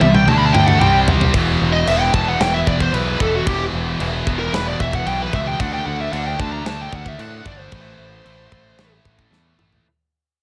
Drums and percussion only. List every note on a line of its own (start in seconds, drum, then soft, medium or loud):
0.01 high tom medium
0.15 mid tom medium
0.28 mid tom medium
0.55 mid tom loud
0.68 mid tom medium
0.81 mid tom medium
1.08 floor tom loud
1.21 floor tom loud
1.34 kick loud
1.34 china medium
1.87 china medium
2.14 kick medium
2.40 snare loud
2.40 china medium
2.67 kick medium
2.80 kick medium
2.94 china soft
3.20 kick medium
3.47 kick loud
3.47 china medium
4.00 china soft
4.27 kick medium
4.54 snare loud
4.54 china medium
4.80 kick medium
4.93 kick medium
5.07 china soft
5.33 kick medium
5.60 kick loud
5.60 china medium
6.13 china medium
6.40 kick medium
6.66 snare loud
6.66 china medium
6.93 kick medium
7.06 kick medium
7.19 china soft
7.46 kick medium
7.72 kick loud
7.72 china medium
8.26 china soft
8.52 kick medium
8.78 snare medium
8.78 china soft
9.05 kick medium
9.19 kick medium
9.33 snare soft
9.59 mid tom medium
9.72 floor tom medium